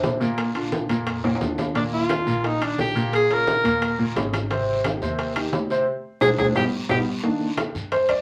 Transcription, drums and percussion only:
0.03 high bongo medium
0.03 low bongo medium
0.03 high conga medium
0.03 low timbale medium
0.03 short guiro medium
0.21 high conga soft
0.21 short guiro medium
0.38 high bongo medium
0.38 high conga soft
0.38 high timbale medium
0.38 long guiro medium
0.38 claves medium
0.55 high bongo soft
0.55 high conga soft
0.55 high timbale medium
0.72 high bongo medium
0.72 high conga medium
0.72 short guiro medium
0.89 high bongo soft
0.89 high conga soft
0.89 high timbale medium
0.89 short guiro medium
1.06 high bongo medium
1.06 high conga soft
1.06 high timbale medium
1.06 long guiro medium
1.06 claves medium
1.24 high bongo soft
1.24 high conga soft
1.24 high timbale medium
1.35 high timbale medium
1.41 high bongo medium
1.41 low bongo medium
1.41 high conga medium
1.41 short guiro medium
1.58 high conga medium
1.58 low timbale medium
1.58 short guiro medium
1.58 claves medium
1.75 high bongo medium
1.75 high conga soft
1.75 high timbale medium
1.75 long guiro medium
1.92 high conga soft
2.09 high bongo medium
2.09 high conga medium
2.09 high timbale medium
2.09 short guiro medium
2.09 claves medium
2.27 high conga soft
2.27 short guiro medium
2.44 high bongo medium
2.44 high conga soft
2.44 high timbale medium
2.44 long guiro medium
2.61 high conga soft
2.61 high timbale medium
2.61 claves medium
2.78 high bongo medium
2.78 low bongo medium
2.78 high conga medium
2.78 short guiro medium
2.95 high conga soft
2.95 short guiro medium
3.13 high bongo medium
3.13 high conga soft
3.13 high timbale medium
3.13 long guiro medium
3.13 claves medium
3.30 high bongo soft
3.30 high conga soft
3.30 high timbale medium
3.47 high bongo medium
3.47 high conga medium
3.47 short guiro medium
3.64 high bongo soft
3.64 high conga soft
3.64 high timbale medium
3.64 short guiro medium
3.82 high bongo medium
3.82 high conga soft
3.82 high timbale medium
3.82 long guiro medium
3.82 claves medium
3.99 high bongo soft
3.99 high conga soft
4.16 high bongo medium
4.16 low bongo medium
4.16 high conga medium
4.16 high timbale medium
4.16 low timbale medium
4.16 short guiro medium
4.33 high conga medium
4.33 high timbale medium
4.33 short guiro medium
4.33 claves medium
4.50 high bongo medium
4.50 high conga soft
4.50 high timbale medium
4.50 long guiro medium
4.67 high conga soft
4.84 high bongo medium
4.84 high conga medium
4.84 high timbale medium
4.84 short guiro medium
4.84 claves medium
5.02 high conga soft
5.02 short guiro medium
5.19 high bongo medium
5.19 high conga soft
5.19 high timbale medium
5.19 long guiro medium
5.36 high conga soft
5.36 high timbale medium
5.36 claves medium
5.52 high bongo medium
5.52 low bongo medium
5.52 high conga medium
5.52 low timbale medium
5.52 short guiro medium
5.70 high conga soft
5.70 short guiro medium
6.21 low bongo loud
6.21 low conga medium
6.21 high timbale medium
6.21 long guiro medium
6.21 claves medium
6.38 low bongo medium
6.38 low conga medium
6.38 high timbale loud
6.38 long guiro loud
6.38 claves loud
6.55 low bongo loud
6.55 low conga medium
6.55 high timbale medium
6.55 long guiro loud
6.55 claves medium
6.89 low bongo medium
6.89 low conga loud
6.89 high timbale loud
6.89 claves medium
7.24 high bongo medium
7.24 high conga soft
7.24 long guiro medium
7.41 high bongo soft
7.41 high conga soft
7.57 high bongo medium
7.57 high conga medium
7.57 high timbale loud
7.57 low timbale medium
7.57 short guiro medium
7.57 claves medium
7.75 high bongo soft
7.75 high conga soft
7.75 short guiro medium
7.92 high bongo medium
7.92 high conga soft
7.92 high timbale medium
7.92 long guiro medium
8.09 high bongo soft
8.09 high conga soft
8.09 high timbale medium
8.09 claves medium

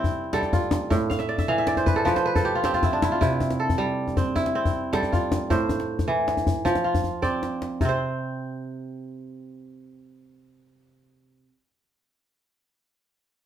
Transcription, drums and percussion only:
0.04 djembe tone medium
0.04 djembe bass medium
0.24 djembe slap soft
0.33 djembe slap medium
0.43 djembe tone soft
0.53 djembe slap soft
0.53 djembe bass medium
0.71 djembe slap medium
0.71 djembe tone medium
0.91 djembe bass medium
1.11 djembe tone medium
1.20 djembe slap soft
1.38 djembe tone medium
1.38 djembe bass medium
1.48 djembe slap soft
1.67 djembe slap medium
1.77 djembe tone medium
1.87 djembe slap soft
1.87 djembe bass medium
1.96 djembe slap soft
2.06 djembe tone medium
2.16 djembe slap medium
2.26 djembe slap soft
2.36 djembe tone medium
2.36 djembe bass medium
2.55 djembe slap soft
2.64 djembe slap medium
2.74 djembe tone soft
2.83 djembe slap soft
2.83 djembe bass medium
3.02 djembe slap medium
3.02 djembe tone medium
3.21 djembe bass medium
3.40 djembe tone medium
3.51 djembe slap medium
3.70 djembe tone medium
3.70 djembe bass medium
3.79 djembe slap soft
4.08 djembe tone soft
4.17 djembe slap soft
4.17 djembe bass medium
4.36 djembe tone medium
4.46 djembe slap soft
4.65 djembe tone medium
4.65 djembe bass medium
4.84 djembe slap soft
4.93 djembe slap medium
5.03 djembe tone soft
5.13 djembe slap soft
5.13 djembe bass medium
5.32 djembe slap medium
5.32 djembe tone medium
5.51 djembe bass medium
5.60 djembe slap soft
5.69 djembe slap soft
5.69 djembe tone medium
5.80 djembe slap soft
5.99 djembe slap soft
5.99 djembe tone soft
5.99 djembe bass soft
6.09 djembe slap soft
6.28 djembe slap medium
6.37 djembe tone medium
6.47 djembe bass medium
6.66 djembe slap soft
6.66 djembe tone medium
6.75 djembe slap medium
6.95 djembe tone medium
6.95 djembe bass medium
7.04 djembe bass soft
7.23 djembe bass soft
7.43 djembe slap medium
7.62 djembe slap medium
7.81 djembe bass medium

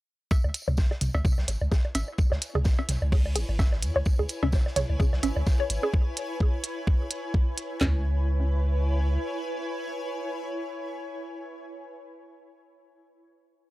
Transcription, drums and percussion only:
0.31 kick loud
0.31 tambourine medium
0.31 cowbell medium
0.44 low woodblock medium
0.54 closed hi-hat medium
0.54 tambourine medium
0.68 mid tom medium
0.68 low woodblock soft
0.77 kick loud
0.77 snare loud
0.77 tambourine medium
0.91 snare soft
0.91 low woodblock medium
1.01 closed hi-hat medium
1.01 mid tom medium
1.01 tambourine medium
1.15 cowbell medium
1.15 low woodblock medium
1.25 kick loud
1.25 mid tom medium
1.25 tambourine medium
1.38 snare medium
1.38 low woodblock soft
1.48 closed hi-hat medium
1.48 tambourine medium
1.61 low woodblock medium
1.72 kick loud
1.72 snare loud
1.72 tambourine medium
1.85 low woodblock medium
1.95 closed hi-hat medium
1.95 tambourine medium
1.95 cowbell medium
2.08 low woodblock soft
2.18 kick loud
2.18 tambourine medium
2.32 snare soft
2.32 low woodblock medium
2.42 closed hi-hat medium
2.42 tambourine medium
2.55 mid tom medium
2.55 low woodblock medium
2.64 kick loud
2.64 snare loud
2.64 tambourine medium
2.79 cowbell medium
2.79 low woodblock soft
2.89 snare soft
2.89 closed hi-hat medium
2.89 mid tom medium
2.89 tambourine medium
3.02 low woodblock medium
3.12 kick loud
3.12 open hi-hat medium
3.26 low woodblock medium
3.36 closed hi-hat medium
3.36 tambourine medium
3.49 low woodblock soft
3.59 kick loud
3.59 snare loud
3.59 tambourine medium
3.59 cowbell medium
3.72 snare soft
3.72 low woodblock medium
3.82 closed hi-hat loud
3.82 tambourine medium
3.96 low woodblock medium
4.05 kick loud
4.05 tambourine medium
4.19 low woodblock soft
4.29 closed hi-hat medium
4.29 tambourine medium
4.43 mid tom loud
4.43 cowbell medium
4.43 low woodblock medium
4.52 kick loud
4.52 snare loud
4.52 tambourine medium
4.66 snare soft
4.66 low woodblock medium
4.76 snare soft
4.76 closed hi-hat loud
4.76 mid tom medium
4.76 tambourine medium
4.90 low woodblock soft
5.00 kick loud
5.00 mid tom loud
5.00 tambourine medium
5.13 snare medium
5.13 low woodblock medium
5.23 closed hi-hat medium
5.23 tambourine medium
5.23 cowbell medium
5.37 low woodblock medium
5.46 kick loud
5.46 snare loud
5.46 tambourine medium
5.60 low woodblock soft
5.70 closed hi-hat loud
5.70 tambourine medium
5.83 low woodblock medium
5.94 kick loud
6.17 closed hi-hat loud
6.40 kick loud
6.64 closed hi-hat medium
6.87 kick loud
7.11 closed hi-hat medium
7.34 kick loud
7.58 closed hi-hat loud
7.81 snare loud
7.81 clap medium
7.81 floor tom loud

